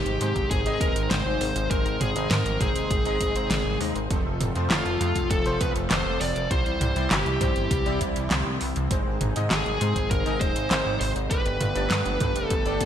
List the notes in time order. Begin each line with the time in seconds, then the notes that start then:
Already playing: C3 D#3 G#3 D#4 G4 C5
0.06 G#1, closed hi-hat
0.21 G#2 G#3 C4 D#4 C5, closed hi-hat
0.36 G#1, kick, closed hi-hat
0.51 G#1 G#4, kick, closed hi-hat
0.66 G#1 G#3 C4 D#4 D#5, closed hi-hat
0.81 D#1 A#4, kick, closed hi-hat
0.96 G#1, closed hi-hat
1.11 G#1 G#3 C4 D#4 C5, snare, closed hi-hat
1.26 G#1
1.41 G#1, open hi-hat
1.56 G#1, closed hi-hat
1.71 G#1 G#3 C4 D#4 A#4 C5, kick, closed hi-hat
1.86 G#1, closed hi-hat
2.01 G#1 G#4, closed hi-hat, mid tom
2.15 G#1 G#3 C4 D#4 D#5, closed hi-hat
2.31 G#2 A#4, snare, closed hi-hat
2.45 G#1, closed hi-hat
2.61 G#1 G#3 C4 D#4 G#4 C5, kick, closed hi-hat, mid tom
2.76 D#1, closed hi-hat
2.91 G#1, kick, closed hi-hat
3.05 G#1 G#3 C4 D#4 D#5, closed hi-hat
3.21 G#1, kick, closed hi-hat
3.35 G#1 G#3 C4 D#4 C5, closed hi-hat
3.51 G#1, snare, closed hi-hat
3.65 G#1
3.80 D#2 G#3 C4 D#4 D#5, open hi-hat
3.95 G#1, closed hi-hat
4.10 F1 F3 A3 C4 F4 A4, kick, closed hi-hat
4.26 F1
4.40 F1, closed hi-hat, mid tom
4.55 F2 F3 A3 C4 C5, closed hi-hat
4.70 F1 F4, snare, clap, closed hi-hat
4.85 F1, closed hi-hat
5.01 F2 F3 A3 C4 A4, closed hi-hat
5.16 F1, kick, closed hi-hat
5.31 F1 A4, kick, closed hi-hat
5.46 F1 F3 A3 C4 C5, closed hi-hat
5.61 C2 B4, kick, closed hi-hat
5.76 F1, closed hi-hat
5.91 F1 F3 A3 C4 A4 C5, snare, clap, closed hi-hat
6.06 F1
6.21 F1 D5, open hi-hat
6.36 F1, closed hi-hat
6.50 C2 E3 G3 C4 E4 G4 C5, kick, closed hi-hat
6.66 C2, closed hi-hat
6.81 C2, closed hi-hat, mid tom
6.96 C2 G3 C4 E4 D5, closed hi-hat
7.11 G1 G4, snare, clap, closed hi-hat
7.26 C2, closed hi-hat
7.41 C2 G3 C4 E4 C5, kick, closed hi-hat, mid tom
7.56 G1, closed hi-hat
7.71 C2, kick, closed hi-hat
7.86 C2 G3 C4 E4 D5, closed hi-hat
8.01 C2, kick, closed hi-hat
8.16 C2, closed hi-hat
8.31 C2 G3 C4 E4 C5, snare, clap, closed hi-hat
8.46 C2
8.61 C2, open hi-hat
8.76 C2, closed hi-hat
8.91 G#1 D#3 G#3 C4 D#4 G#4 C5, kick, closed hi-hat
9.06 G#1
9.21 G#1, closed hi-hat, mid tom
9.36 G#2 G#3 C4 D#4 D#5, closed hi-hat
9.51 G#1 G#4, snare, clap, closed hi-hat
9.66 G#1, closed hi-hat
9.81 G#2 G#3 C4 D#4 C5, closed hi-hat
9.96 G#1, kick, closed hi-hat
10.10 G#1 A#4, kick, closed hi-hat
10.26 G#1 G#3 C4 D#4 D#5, closed hi-hat
10.41 D#1 C5, kick, closed hi-hat
10.56 G#1, closed hi-hat
10.71 G#1 G#3 C4 D#4 C5, snare, clap, closed hi-hat
10.86 G#1
11.00 G#1 C5, open hi-hat
11.16 G#1, closed hi-hat
11.30 G1 D3 G3 A3 B3 D4 G4 B4, kick, closed hi-hat
11.46 G1, closed hi-hat
11.61 G1, closed hi-hat, mid tom
11.76 G1 A3 D4 G4 D5, closed hi-hat
11.91 G2, snare, clap, closed hi-hat
12.06 G1, closed hi-hat
12.20 G1 A3 D4 G4 B4, kick, closed hi-hat, mid tom
12.36 F1, closed hi-hat
12.46 A4
12.50 G1, kick, closed hi-hat
12.66 G1 A3 D4 G4 D5, closed hi-hat
12.81 G1, kick, closed hi-hat, high tom